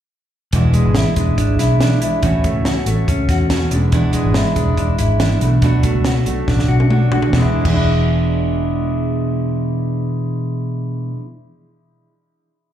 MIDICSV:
0, 0, Header, 1, 5, 480
1, 0, Start_track
1, 0, Tempo, 424929
1, 603, Time_signature, 4, 2, 24, 8
1, 14380, End_track
2, 0, Start_track
2, 0, Title_t, "Clean electric guitar"
2, 0, Program_c, 0, 27
2, 835, Note_on_c, 0, 56, 55
2, 1074, Note_on_c, 0, 64, 58
2, 1296, Note_off_c, 0, 56, 0
2, 1554, Note_on_c, 0, 62, 55
2, 1791, Note_off_c, 0, 64, 0
2, 1795, Note_on_c, 0, 64, 65
2, 2018, Note_off_c, 0, 62, 0
2, 2272, Note_off_c, 0, 64, 0
2, 2764, Note_on_c, 0, 57, 60
2, 3229, Note_off_c, 0, 57, 0
2, 3486, Note_on_c, 0, 61, 60
2, 3726, Note_on_c, 0, 66, 64
2, 3948, Note_off_c, 0, 61, 0
2, 4196, Note_on_c, 0, 40, 81
2, 4249, Note_off_c, 0, 66, 0
2, 4419, Note_off_c, 0, 40, 0
2, 4675, Note_on_c, 0, 56, 61
2, 5138, Note_off_c, 0, 56, 0
2, 5395, Note_on_c, 0, 62, 61
2, 5634, Note_on_c, 0, 64, 66
2, 5866, Note_off_c, 0, 62, 0
2, 6112, Note_on_c, 0, 47, 71
2, 6163, Note_off_c, 0, 64, 0
2, 6342, Note_off_c, 0, 47, 0
2, 6589, Note_on_c, 0, 57, 56
2, 7055, Note_off_c, 0, 57, 0
2, 7312, Note_on_c, 0, 62, 57
2, 7549, Note_on_c, 0, 66, 63
2, 7793, Note_off_c, 0, 62, 0
2, 8025, Note_off_c, 0, 66, 0
2, 14380, End_track
3, 0, Start_track
3, 0, Title_t, "Steel-string acoustic guitar"
3, 0, Program_c, 1, 25
3, 600, Note_on_c, 1, 40, 69
3, 608, Note_on_c, 1, 47, 78
3, 611, Note_on_c, 1, 52, 79
3, 616, Note_on_c, 1, 56, 80
3, 622, Note_on_c, 1, 62, 84
3, 623, Note_on_c, 1, 64, 87
3, 1078, Note_off_c, 1, 52, 0
3, 1080, Note_off_c, 1, 40, 0
3, 1082, Note_off_c, 1, 56, 0
3, 1083, Note_on_c, 1, 52, 59
3, 1084, Note_off_c, 1, 47, 0
3, 1091, Note_off_c, 1, 62, 0
3, 1095, Note_on_c, 1, 56, 61
3, 1110, Note_on_c, 1, 62, 63
3, 1115, Note_off_c, 1, 64, 0
3, 1120, Note_on_c, 1, 64, 67
3, 1302, Note_off_c, 1, 64, 0
3, 1312, Note_off_c, 1, 62, 0
3, 1315, Note_on_c, 1, 64, 51
3, 1322, Note_off_c, 1, 52, 0
3, 1324, Note_off_c, 1, 56, 0
3, 1325, Note_on_c, 1, 62, 47
3, 1338, Note_on_c, 1, 56, 42
3, 1348, Note_on_c, 1, 52, 44
3, 2030, Note_off_c, 1, 52, 0
3, 2034, Note_off_c, 1, 56, 0
3, 2035, Note_on_c, 1, 52, 58
3, 2042, Note_off_c, 1, 62, 0
3, 2048, Note_on_c, 1, 56, 60
3, 2061, Note_on_c, 1, 62, 64
3, 2062, Note_off_c, 1, 64, 0
3, 2067, Note_on_c, 1, 64, 67
3, 2256, Note_off_c, 1, 64, 0
3, 2267, Note_off_c, 1, 62, 0
3, 2270, Note_on_c, 1, 64, 46
3, 2277, Note_off_c, 1, 52, 0
3, 2281, Note_on_c, 1, 62, 50
3, 2283, Note_off_c, 1, 56, 0
3, 2296, Note_on_c, 1, 56, 44
3, 2300, Note_on_c, 1, 52, 45
3, 2506, Note_off_c, 1, 52, 0
3, 2508, Note_on_c, 1, 45, 77
3, 2514, Note_off_c, 1, 64, 0
3, 2516, Note_off_c, 1, 56, 0
3, 2519, Note_off_c, 1, 62, 0
3, 2519, Note_on_c, 1, 52, 88
3, 2521, Note_on_c, 1, 57, 75
3, 2529, Note_on_c, 1, 61, 79
3, 2533, Note_on_c, 1, 66, 84
3, 2989, Note_off_c, 1, 52, 0
3, 2991, Note_off_c, 1, 57, 0
3, 2992, Note_off_c, 1, 45, 0
3, 2994, Note_on_c, 1, 52, 56
3, 3003, Note_off_c, 1, 61, 0
3, 3004, Note_on_c, 1, 57, 64
3, 3005, Note_off_c, 1, 66, 0
3, 3016, Note_on_c, 1, 61, 67
3, 3028, Note_on_c, 1, 66, 65
3, 3216, Note_off_c, 1, 66, 0
3, 3230, Note_on_c, 1, 66, 51
3, 3235, Note_off_c, 1, 52, 0
3, 3236, Note_off_c, 1, 61, 0
3, 3240, Note_off_c, 1, 57, 0
3, 3249, Note_on_c, 1, 61, 45
3, 3259, Note_on_c, 1, 57, 42
3, 3948, Note_on_c, 1, 52, 55
3, 3950, Note_off_c, 1, 57, 0
3, 3953, Note_off_c, 1, 66, 0
3, 3962, Note_off_c, 1, 61, 0
3, 3963, Note_on_c, 1, 57, 61
3, 3976, Note_on_c, 1, 61, 66
3, 3985, Note_on_c, 1, 66, 75
3, 4189, Note_off_c, 1, 66, 0
3, 4192, Note_off_c, 1, 52, 0
3, 4194, Note_on_c, 1, 64, 47
3, 4200, Note_off_c, 1, 57, 0
3, 4204, Note_off_c, 1, 61, 0
3, 4209, Note_on_c, 1, 62, 53
3, 4214, Note_on_c, 1, 56, 46
3, 4222, Note_on_c, 1, 52, 42
3, 4425, Note_off_c, 1, 52, 0
3, 4430, Note_on_c, 1, 40, 80
3, 4431, Note_off_c, 1, 56, 0
3, 4435, Note_off_c, 1, 64, 0
3, 4438, Note_off_c, 1, 62, 0
3, 4438, Note_on_c, 1, 47, 85
3, 4439, Note_on_c, 1, 52, 90
3, 4445, Note_on_c, 1, 56, 88
3, 4451, Note_on_c, 1, 62, 87
3, 4455, Note_on_c, 1, 64, 86
3, 4893, Note_off_c, 1, 52, 0
3, 4903, Note_off_c, 1, 56, 0
3, 4906, Note_on_c, 1, 52, 60
3, 4913, Note_off_c, 1, 40, 0
3, 4916, Note_on_c, 1, 56, 68
3, 4917, Note_off_c, 1, 47, 0
3, 4919, Note_off_c, 1, 64, 0
3, 4925, Note_off_c, 1, 62, 0
3, 4929, Note_on_c, 1, 62, 60
3, 4932, Note_on_c, 1, 64, 73
3, 5121, Note_off_c, 1, 64, 0
3, 5135, Note_on_c, 1, 64, 55
3, 5136, Note_off_c, 1, 62, 0
3, 5146, Note_off_c, 1, 56, 0
3, 5150, Note_on_c, 1, 62, 55
3, 5151, Note_off_c, 1, 52, 0
3, 5159, Note_on_c, 1, 56, 48
3, 5168, Note_on_c, 1, 52, 45
3, 5850, Note_off_c, 1, 52, 0
3, 5864, Note_off_c, 1, 56, 0
3, 5864, Note_on_c, 1, 52, 66
3, 5866, Note_off_c, 1, 64, 0
3, 5878, Note_on_c, 1, 56, 58
3, 5881, Note_off_c, 1, 62, 0
3, 5885, Note_on_c, 1, 62, 67
3, 5891, Note_on_c, 1, 64, 71
3, 6103, Note_off_c, 1, 64, 0
3, 6108, Note_on_c, 1, 66, 46
3, 6110, Note_off_c, 1, 52, 0
3, 6110, Note_off_c, 1, 62, 0
3, 6117, Note_off_c, 1, 56, 0
3, 6123, Note_on_c, 1, 62, 48
3, 6141, Note_on_c, 1, 57, 43
3, 6349, Note_off_c, 1, 57, 0
3, 6352, Note_off_c, 1, 66, 0
3, 6353, Note_on_c, 1, 47, 81
3, 6360, Note_off_c, 1, 62, 0
3, 6362, Note_on_c, 1, 54, 82
3, 6363, Note_on_c, 1, 57, 81
3, 6373, Note_on_c, 1, 62, 88
3, 6374, Note_on_c, 1, 66, 97
3, 6813, Note_off_c, 1, 54, 0
3, 6827, Note_off_c, 1, 57, 0
3, 6827, Note_on_c, 1, 54, 58
3, 6836, Note_off_c, 1, 47, 0
3, 6840, Note_on_c, 1, 57, 64
3, 6842, Note_off_c, 1, 62, 0
3, 6846, Note_off_c, 1, 66, 0
3, 6846, Note_on_c, 1, 62, 65
3, 6862, Note_on_c, 1, 66, 67
3, 7063, Note_off_c, 1, 66, 0
3, 7072, Note_off_c, 1, 54, 0
3, 7077, Note_on_c, 1, 66, 45
3, 7079, Note_off_c, 1, 57, 0
3, 7082, Note_off_c, 1, 62, 0
3, 7096, Note_on_c, 1, 62, 46
3, 7106, Note_on_c, 1, 57, 45
3, 7794, Note_off_c, 1, 57, 0
3, 7794, Note_on_c, 1, 54, 62
3, 7799, Note_off_c, 1, 66, 0
3, 7807, Note_on_c, 1, 57, 56
3, 7811, Note_off_c, 1, 62, 0
3, 7816, Note_on_c, 1, 62, 63
3, 7825, Note_on_c, 1, 66, 67
3, 8024, Note_off_c, 1, 66, 0
3, 8037, Note_off_c, 1, 54, 0
3, 8038, Note_on_c, 1, 66, 46
3, 8044, Note_off_c, 1, 57, 0
3, 8048, Note_off_c, 1, 62, 0
3, 8060, Note_on_c, 1, 62, 47
3, 8079, Note_on_c, 1, 57, 39
3, 8235, Note_on_c, 1, 40, 71
3, 8279, Note_off_c, 1, 66, 0
3, 8279, Note_on_c, 1, 47, 72
3, 8290, Note_off_c, 1, 62, 0
3, 8300, Note_off_c, 1, 57, 0
3, 8310, Note_on_c, 1, 52, 71
3, 8340, Note_on_c, 1, 56, 77
3, 8366, Note_on_c, 1, 62, 88
3, 8395, Note_on_c, 1, 64, 88
3, 8594, Note_off_c, 1, 40, 0
3, 8599, Note_on_c, 1, 40, 66
3, 8633, Note_off_c, 1, 47, 0
3, 8633, Note_off_c, 1, 62, 0
3, 8637, Note_on_c, 1, 47, 67
3, 8664, Note_off_c, 1, 52, 0
3, 8668, Note_on_c, 1, 52, 66
3, 8694, Note_off_c, 1, 56, 0
3, 8699, Note_on_c, 1, 56, 68
3, 8725, Note_on_c, 1, 62, 71
3, 8752, Note_off_c, 1, 64, 0
3, 8757, Note_on_c, 1, 64, 75
3, 12552, Note_off_c, 1, 40, 0
3, 12591, Note_off_c, 1, 47, 0
3, 12622, Note_off_c, 1, 52, 0
3, 12653, Note_off_c, 1, 56, 0
3, 12679, Note_off_c, 1, 62, 0
3, 12710, Note_off_c, 1, 64, 0
3, 14380, End_track
4, 0, Start_track
4, 0, Title_t, "Fingered electric bass"
4, 0, Program_c, 2, 33
4, 600, Note_on_c, 2, 28, 89
4, 906, Note_off_c, 2, 28, 0
4, 961, Note_on_c, 2, 32, 87
4, 1165, Note_off_c, 2, 32, 0
4, 1316, Note_on_c, 2, 28, 74
4, 1522, Note_off_c, 2, 28, 0
4, 1557, Note_on_c, 2, 32, 79
4, 1762, Note_off_c, 2, 32, 0
4, 1795, Note_on_c, 2, 35, 71
4, 2204, Note_off_c, 2, 35, 0
4, 2517, Note_on_c, 2, 33, 89
4, 2823, Note_off_c, 2, 33, 0
4, 2871, Note_on_c, 2, 37, 68
4, 3078, Note_off_c, 2, 37, 0
4, 3233, Note_on_c, 2, 33, 81
4, 3438, Note_off_c, 2, 33, 0
4, 3478, Note_on_c, 2, 37, 72
4, 3681, Note_off_c, 2, 37, 0
4, 3715, Note_on_c, 2, 40, 75
4, 4123, Note_off_c, 2, 40, 0
4, 4190, Note_on_c, 2, 28, 84
4, 4702, Note_off_c, 2, 28, 0
4, 4794, Note_on_c, 2, 32, 87
4, 4999, Note_off_c, 2, 32, 0
4, 5150, Note_on_c, 2, 28, 83
4, 5357, Note_off_c, 2, 28, 0
4, 5393, Note_on_c, 2, 28, 79
4, 5598, Note_off_c, 2, 28, 0
4, 5635, Note_on_c, 2, 32, 81
4, 6044, Note_off_c, 2, 32, 0
4, 6108, Note_on_c, 2, 35, 82
4, 6622, Note_off_c, 2, 35, 0
4, 6709, Note_on_c, 2, 37, 77
4, 6917, Note_off_c, 2, 37, 0
4, 7078, Note_on_c, 2, 35, 89
4, 7282, Note_off_c, 2, 35, 0
4, 7317, Note_on_c, 2, 33, 80
4, 7522, Note_off_c, 2, 33, 0
4, 7556, Note_on_c, 2, 35, 72
4, 7966, Note_off_c, 2, 35, 0
4, 8282, Note_on_c, 2, 28, 83
4, 8415, Note_off_c, 2, 28, 0
4, 8643, Note_on_c, 2, 28, 93
4, 12096, Note_off_c, 2, 28, 0
4, 14380, End_track
5, 0, Start_track
5, 0, Title_t, "Drums"
5, 594, Note_on_c, 9, 42, 68
5, 600, Note_on_c, 9, 36, 85
5, 707, Note_off_c, 9, 42, 0
5, 713, Note_off_c, 9, 36, 0
5, 831, Note_on_c, 9, 42, 71
5, 944, Note_off_c, 9, 42, 0
5, 1068, Note_on_c, 9, 38, 90
5, 1077, Note_on_c, 9, 42, 72
5, 1181, Note_off_c, 9, 38, 0
5, 1190, Note_off_c, 9, 42, 0
5, 1314, Note_on_c, 9, 42, 61
5, 1317, Note_on_c, 9, 36, 75
5, 1427, Note_off_c, 9, 42, 0
5, 1430, Note_off_c, 9, 36, 0
5, 1557, Note_on_c, 9, 36, 85
5, 1559, Note_on_c, 9, 42, 76
5, 1670, Note_off_c, 9, 36, 0
5, 1672, Note_off_c, 9, 42, 0
5, 1799, Note_on_c, 9, 38, 33
5, 1799, Note_on_c, 9, 42, 71
5, 1912, Note_off_c, 9, 38, 0
5, 1912, Note_off_c, 9, 42, 0
5, 2039, Note_on_c, 9, 38, 95
5, 2040, Note_on_c, 9, 42, 71
5, 2152, Note_off_c, 9, 38, 0
5, 2153, Note_off_c, 9, 42, 0
5, 2278, Note_on_c, 9, 42, 67
5, 2391, Note_off_c, 9, 42, 0
5, 2514, Note_on_c, 9, 42, 75
5, 2519, Note_on_c, 9, 36, 94
5, 2627, Note_off_c, 9, 42, 0
5, 2632, Note_off_c, 9, 36, 0
5, 2757, Note_on_c, 9, 42, 71
5, 2760, Note_on_c, 9, 36, 84
5, 2870, Note_off_c, 9, 42, 0
5, 2873, Note_off_c, 9, 36, 0
5, 2995, Note_on_c, 9, 38, 90
5, 3004, Note_on_c, 9, 42, 75
5, 3108, Note_off_c, 9, 38, 0
5, 3117, Note_off_c, 9, 42, 0
5, 3234, Note_on_c, 9, 42, 65
5, 3347, Note_off_c, 9, 42, 0
5, 3479, Note_on_c, 9, 36, 83
5, 3482, Note_on_c, 9, 42, 79
5, 3592, Note_off_c, 9, 36, 0
5, 3595, Note_off_c, 9, 42, 0
5, 3714, Note_on_c, 9, 36, 91
5, 3717, Note_on_c, 9, 38, 35
5, 3717, Note_on_c, 9, 42, 78
5, 3827, Note_off_c, 9, 36, 0
5, 3830, Note_off_c, 9, 38, 0
5, 3830, Note_off_c, 9, 42, 0
5, 3953, Note_on_c, 9, 38, 97
5, 3953, Note_on_c, 9, 42, 74
5, 4066, Note_off_c, 9, 38, 0
5, 4066, Note_off_c, 9, 42, 0
5, 4192, Note_on_c, 9, 42, 62
5, 4305, Note_off_c, 9, 42, 0
5, 4430, Note_on_c, 9, 42, 68
5, 4435, Note_on_c, 9, 36, 95
5, 4543, Note_off_c, 9, 42, 0
5, 4548, Note_off_c, 9, 36, 0
5, 4664, Note_on_c, 9, 42, 73
5, 4777, Note_off_c, 9, 42, 0
5, 4907, Note_on_c, 9, 38, 92
5, 4916, Note_on_c, 9, 42, 70
5, 5019, Note_off_c, 9, 38, 0
5, 5029, Note_off_c, 9, 42, 0
5, 5152, Note_on_c, 9, 42, 59
5, 5153, Note_on_c, 9, 36, 83
5, 5265, Note_off_c, 9, 42, 0
5, 5266, Note_off_c, 9, 36, 0
5, 5393, Note_on_c, 9, 36, 77
5, 5396, Note_on_c, 9, 42, 70
5, 5506, Note_off_c, 9, 36, 0
5, 5509, Note_off_c, 9, 42, 0
5, 5631, Note_on_c, 9, 42, 76
5, 5744, Note_off_c, 9, 42, 0
5, 5872, Note_on_c, 9, 38, 98
5, 5872, Note_on_c, 9, 42, 76
5, 5985, Note_off_c, 9, 38, 0
5, 5985, Note_off_c, 9, 42, 0
5, 6113, Note_on_c, 9, 42, 64
5, 6226, Note_off_c, 9, 42, 0
5, 6348, Note_on_c, 9, 42, 69
5, 6352, Note_on_c, 9, 36, 96
5, 6461, Note_off_c, 9, 42, 0
5, 6464, Note_off_c, 9, 36, 0
5, 6589, Note_on_c, 9, 42, 76
5, 6594, Note_on_c, 9, 36, 83
5, 6702, Note_off_c, 9, 42, 0
5, 6707, Note_off_c, 9, 36, 0
5, 6829, Note_on_c, 9, 38, 96
5, 6838, Note_on_c, 9, 42, 77
5, 6942, Note_off_c, 9, 38, 0
5, 6951, Note_off_c, 9, 42, 0
5, 7073, Note_on_c, 9, 42, 57
5, 7186, Note_off_c, 9, 42, 0
5, 7319, Note_on_c, 9, 36, 86
5, 7319, Note_on_c, 9, 38, 54
5, 7432, Note_off_c, 9, 36, 0
5, 7432, Note_off_c, 9, 38, 0
5, 7442, Note_on_c, 9, 38, 45
5, 7555, Note_off_c, 9, 38, 0
5, 7682, Note_on_c, 9, 48, 58
5, 7795, Note_off_c, 9, 48, 0
5, 7799, Note_on_c, 9, 47, 71
5, 7912, Note_off_c, 9, 47, 0
5, 8039, Note_on_c, 9, 43, 88
5, 8152, Note_off_c, 9, 43, 0
5, 8160, Note_on_c, 9, 43, 75
5, 8273, Note_off_c, 9, 43, 0
5, 8280, Note_on_c, 9, 38, 74
5, 8281, Note_on_c, 9, 36, 88
5, 8393, Note_off_c, 9, 38, 0
5, 8394, Note_off_c, 9, 36, 0
5, 8642, Note_on_c, 9, 49, 75
5, 8643, Note_on_c, 9, 36, 92
5, 8755, Note_off_c, 9, 49, 0
5, 8756, Note_off_c, 9, 36, 0
5, 14380, End_track
0, 0, End_of_file